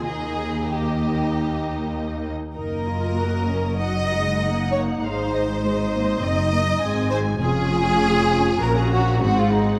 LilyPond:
<<
  \new Staff \with { instrumentName = "Violin section" } { \time 4/4 \key ees \mixolydian \tempo 4 = 98 ees''4 ees''2~ ees''8 r8 | \key aes \mixolydian ees''2 ges''4 ges''4 | f''8 ees''8 ees''2 aes''4 | aes''2 bes''4 ges''4 | }
  \new Staff \with { instrumentName = "Violin section" } { \time 4/4 \key ees \mixolydian aes'4 g'2~ g'8 r8 | \key aes \mixolydian bes'2 ees''4. des''8 | c''2 ees''4. c''8 | aes'2 bes'16 aes'16 ges'8 ges'16 f'16 ees'8 | }
  \new Staff \with { instrumentName = "Viola section" } { \time 4/4 \key ees \mixolydian << { ees'4 ees'2~ ees'8 r8 | \key aes \mixolydian ees'8 f'8 ges'8 des'8 ees'2~ | ees'2 ees'4 c'4 | f'2 ges'4 aes'4 | } \\ { bes4 bes2~ bes8 r8 | bes2 ges8 aes8 bes8 bes8 | aes4 aes8 bes8 c'8 bes8 aes4 | des'2 des'4 c'4 | } >> }
  \new Staff \with { instrumentName = "Cello section" } { \clef bass \time 4/4 \key ees \mixolydian ees,2.~ ees,8 r8 | \key aes \mixolydian ges,1 | aes,2 ges,4 aes,4 | f,2 bes,4 aes,4 | }
  \new Staff \with { instrumentName = "Double bass section" } { \clef bass \time 4/4 \key ees \mixolydian ees,2.~ ees,8 r8 | \key aes \mixolydian ges,,1 | aes,,2 ges,,4 aes,,4 | f,,2 bes,,4 aes,,4 | }
>>